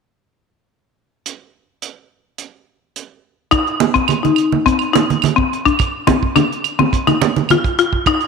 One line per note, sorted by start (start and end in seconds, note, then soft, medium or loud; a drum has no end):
1.26 closed hi-hat soft
1.82 closed hi-hat soft
2.38 closed hi-hat soft
2.96 closed hi-hat soft
3.51 3.59 D#4 medium
3.51 kick medium
3.51 closed hi-hat medium
3.51 claves medium
3.67 closed hi-hat soft
3.80 closed hi-hat soft
3.80 high conga medium
3.94 4.02 C4 medium
3.94 kick soft
3.94 closed hi-hat soft
4.08 closed hi-hat medium
4.08 high conga medium
4.08 claves medium
4.23 4.48 D#4 medium
4.23 closed hi-hat soft
4.23 high conga medium
4.36 closed hi-hat soft
4.36 claves medium
4.52 high conga medium
4.66 4.74 C4 medium
4.66 kick medium
4.66 closed hi-hat medium
4.79 closed hi-hat soft
4.79 claves soft
4.93 5.01 D#4 medium
4.93 closed hi-hat soft
4.93 high conga medium
5.10 closed hi-hat soft
5.10 high conga medium
5.22 closed hi-hat medium
5.22 high conga medium
5.22 claves medium
5.36 5.44 C4 medium
5.36 kick medium
5.53 closed hi-hat soft
5.66 5.74 D4 medium
5.66 kick soft
5.66 closed hi-hat soft
5.79 kick medium
5.79 closed hi-hat medium
5.79 claves medium
6.07 6.15 C4 medium
6.07 kick medium
6.07 closed hi-hat soft
6.07 high conga medium
6.23 kick medium
6.36 6.44 D4 medium
6.36 closed hi-hat medium
6.36 high conga medium
6.36 claves medium
6.53 closed hi-hat soft
6.64 closed hi-hat soft
6.64 claves medium
6.79 6.87 C4 medium
6.79 high conga medium
6.93 kick medium
6.93 closed hi-hat medium
7.07 7.15 D#4 medium
7.07 closed hi-hat soft
7.07 high conga medium
7.07 claves medium
7.22 closed hi-hat soft
7.22 high conga medium
7.36 closed hi-hat soft
7.36 high conga medium
7.49 7.59 F4 medium
7.49 closed hi-hat medium
7.49 high conga medium
7.49 claves medium
7.64 kick medium
7.64 closed hi-hat soft
7.79 7.87 F4 medium
7.79 closed hi-hat soft
7.93 kick soft
8.06 8.15 D#4 medium
8.06 kick medium
8.06 closed hi-hat medium
8.06 claves medium
8.21 closed hi-hat soft